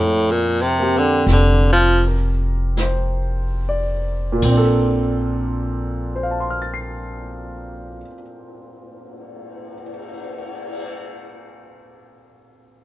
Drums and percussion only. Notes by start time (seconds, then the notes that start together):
1.27 brush sweep, snare
2.77 brush sweep, snare, hi-hat pedal
4.42 kick, crash
5.56 cymbal swell